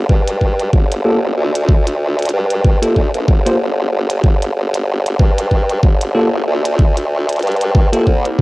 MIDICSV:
0, 0, Header, 1, 4, 480
1, 0, Start_track
1, 0, Key_signature, -2, "minor"
1, 0, Tempo, 638298
1, 1270, Time_signature, 4, 2, 24, 8
1, 6330, End_track
2, 0, Start_track
2, 0, Title_t, "Tine electric piano"
2, 0, Program_c, 0, 4
2, 788, Note_on_c, 0, 58, 94
2, 789, Note_on_c, 0, 67, 84
2, 789, Note_on_c, 0, 69, 102
2, 790, Note_on_c, 0, 65, 82
2, 884, Note_off_c, 0, 58, 0
2, 884, Note_off_c, 0, 67, 0
2, 884, Note_off_c, 0, 69, 0
2, 885, Note_off_c, 0, 65, 0
2, 2121, Note_on_c, 0, 58, 85
2, 2122, Note_on_c, 0, 69, 96
2, 2123, Note_on_c, 0, 65, 81
2, 2123, Note_on_c, 0, 67, 79
2, 2241, Note_off_c, 0, 58, 0
2, 2242, Note_off_c, 0, 65, 0
2, 2242, Note_off_c, 0, 67, 0
2, 2242, Note_off_c, 0, 69, 0
2, 2602, Note_on_c, 0, 65, 87
2, 2602, Note_on_c, 0, 67, 90
2, 2603, Note_on_c, 0, 58, 99
2, 2604, Note_on_c, 0, 72, 113
2, 2676, Note_off_c, 0, 58, 0
2, 2676, Note_off_c, 0, 65, 0
2, 2676, Note_off_c, 0, 67, 0
2, 2676, Note_off_c, 0, 72, 0
2, 4623, Note_on_c, 0, 65, 81
2, 4623, Note_on_c, 0, 67, 83
2, 4623, Note_on_c, 0, 69, 103
2, 4624, Note_on_c, 0, 58, 95
2, 4721, Note_off_c, 0, 65, 0
2, 4721, Note_off_c, 0, 67, 0
2, 4721, Note_off_c, 0, 69, 0
2, 4722, Note_off_c, 0, 58, 0
2, 5960, Note_on_c, 0, 65, 84
2, 5960, Note_on_c, 0, 67, 82
2, 5961, Note_on_c, 0, 58, 85
2, 5961, Note_on_c, 0, 69, 91
2, 6080, Note_off_c, 0, 65, 0
2, 6081, Note_off_c, 0, 58, 0
2, 6081, Note_off_c, 0, 67, 0
2, 6081, Note_off_c, 0, 69, 0
2, 6330, End_track
3, 0, Start_track
3, 0, Title_t, "Wobble bass"
3, 0, Program_c, 1, 39
3, 70, Note_on_c, 1, 43, 102
3, 534, Note_off_c, 1, 43, 0
3, 552, Note_on_c, 1, 31, 94
3, 1015, Note_off_c, 1, 31, 0
3, 1028, Note_on_c, 1, 38, 98
3, 1732, Note_off_c, 1, 38, 0
3, 1753, Note_on_c, 1, 43, 97
3, 2107, Note_off_c, 1, 43, 0
3, 2125, Note_on_c, 1, 29, 93
3, 2213, Note_off_c, 1, 29, 0
3, 2228, Note_on_c, 1, 38, 96
3, 2344, Note_off_c, 1, 38, 0
3, 2361, Note_on_c, 1, 34, 101
3, 2451, Note_off_c, 1, 34, 0
3, 2468, Note_on_c, 1, 31, 92
3, 2932, Note_off_c, 1, 31, 0
3, 2950, Note_on_c, 1, 31, 98
3, 3174, Note_off_c, 1, 31, 0
3, 3186, Note_on_c, 1, 31, 95
3, 3411, Note_off_c, 1, 31, 0
3, 3428, Note_on_c, 1, 31, 94
3, 3892, Note_off_c, 1, 31, 0
3, 3904, Note_on_c, 1, 43, 101
3, 4371, Note_off_c, 1, 43, 0
3, 4384, Note_on_c, 1, 31, 97
3, 4851, Note_off_c, 1, 31, 0
3, 4867, Note_on_c, 1, 38, 95
3, 5572, Note_off_c, 1, 38, 0
3, 5588, Note_on_c, 1, 43, 87
3, 5944, Note_off_c, 1, 43, 0
3, 5963, Note_on_c, 1, 29, 89
3, 6052, Note_off_c, 1, 29, 0
3, 6068, Note_on_c, 1, 36, 96
3, 6330, Note_off_c, 1, 36, 0
3, 6330, End_track
4, 0, Start_track
4, 0, Title_t, "Drums"
4, 70, Note_on_c, 9, 36, 105
4, 145, Note_off_c, 9, 36, 0
4, 207, Note_on_c, 9, 42, 69
4, 282, Note_off_c, 9, 42, 0
4, 310, Note_on_c, 9, 36, 57
4, 385, Note_off_c, 9, 36, 0
4, 448, Note_on_c, 9, 42, 37
4, 523, Note_off_c, 9, 42, 0
4, 550, Note_on_c, 9, 36, 110
4, 625, Note_off_c, 9, 36, 0
4, 689, Note_on_c, 9, 42, 61
4, 764, Note_off_c, 9, 42, 0
4, 1168, Note_on_c, 9, 42, 66
4, 1243, Note_off_c, 9, 42, 0
4, 1269, Note_on_c, 9, 36, 120
4, 1344, Note_off_c, 9, 36, 0
4, 1407, Note_on_c, 9, 42, 53
4, 1482, Note_off_c, 9, 42, 0
4, 1645, Note_on_c, 9, 42, 28
4, 1672, Note_off_c, 9, 42, 0
4, 1672, Note_on_c, 9, 42, 38
4, 1695, Note_off_c, 9, 42, 0
4, 1695, Note_on_c, 9, 42, 44
4, 1721, Note_off_c, 9, 42, 0
4, 1721, Note_on_c, 9, 42, 51
4, 1796, Note_off_c, 9, 42, 0
4, 1882, Note_on_c, 9, 42, 51
4, 1957, Note_off_c, 9, 42, 0
4, 1988, Note_on_c, 9, 36, 105
4, 2063, Note_off_c, 9, 36, 0
4, 2125, Note_on_c, 9, 42, 67
4, 2200, Note_off_c, 9, 42, 0
4, 2227, Note_on_c, 9, 36, 59
4, 2303, Note_off_c, 9, 36, 0
4, 2364, Note_on_c, 9, 42, 38
4, 2439, Note_off_c, 9, 42, 0
4, 2468, Note_on_c, 9, 36, 114
4, 2543, Note_off_c, 9, 36, 0
4, 2605, Note_on_c, 9, 42, 64
4, 2681, Note_off_c, 9, 42, 0
4, 3082, Note_on_c, 9, 42, 71
4, 3157, Note_off_c, 9, 42, 0
4, 3186, Note_on_c, 9, 36, 116
4, 3261, Note_off_c, 9, 36, 0
4, 3326, Note_on_c, 9, 42, 51
4, 3401, Note_off_c, 9, 42, 0
4, 3565, Note_on_c, 9, 42, 59
4, 3640, Note_off_c, 9, 42, 0
4, 3806, Note_on_c, 9, 42, 53
4, 3881, Note_off_c, 9, 42, 0
4, 3905, Note_on_c, 9, 36, 114
4, 3981, Note_off_c, 9, 36, 0
4, 4048, Note_on_c, 9, 42, 68
4, 4123, Note_off_c, 9, 42, 0
4, 4145, Note_on_c, 9, 36, 63
4, 4221, Note_off_c, 9, 36, 0
4, 4283, Note_on_c, 9, 42, 36
4, 4358, Note_off_c, 9, 42, 0
4, 4385, Note_on_c, 9, 36, 113
4, 4460, Note_off_c, 9, 36, 0
4, 4522, Note_on_c, 9, 42, 61
4, 4597, Note_off_c, 9, 42, 0
4, 5003, Note_on_c, 9, 42, 66
4, 5078, Note_off_c, 9, 42, 0
4, 5107, Note_on_c, 9, 36, 117
4, 5182, Note_off_c, 9, 36, 0
4, 5243, Note_on_c, 9, 42, 48
4, 5318, Note_off_c, 9, 42, 0
4, 5483, Note_on_c, 9, 42, 55
4, 5510, Note_off_c, 9, 42, 0
4, 5510, Note_on_c, 9, 42, 48
4, 5536, Note_off_c, 9, 42, 0
4, 5536, Note_on_c, 9, 42, 38
4, 5560, Note_off_c, 9, 42, 0
4, 5560, Note_on_c, 9, 42, 32
4, 5584, Note_off_c, 9, 42, 0
4, 5584, Note_on_c, 9, 42, 28
4, 5619, Note_off_c, 9, 42, 0
4, 5619, Note_on_c, 9, 42, 23
4, 5653, Note_off_c, 9, 42, 0
4, 5653, Note_on_c, 9, 42, 20
4, 5689, Note_off_c, 9, 42, 0
4, 5689, Note_on_c, 9, 42, 16
4, 5724, Note_off_c, 9, 42, 0
4, 5724, Note_on_c, 9, 42, 50
4, 5799, Note_off_c, 9, 42, 0
4, 5827, Note_on_c, 9, 36, 111
4, 5902, Note_off_c, 9, 36, 0
4, 5964, Note_on_c, 9, 42, 66
4, 6040, Note_off_c, 9, 42, 0
4, 6068, Note_on_c, 9, 36, 63
4, 6143, Note_off_c, 9, 36, 0
4, 6206, Note_on_c, 9, 42, 37
4, 6282, Note_off_c, 9, 42, 0
4, 6330, End_track
0, 0, End_of_file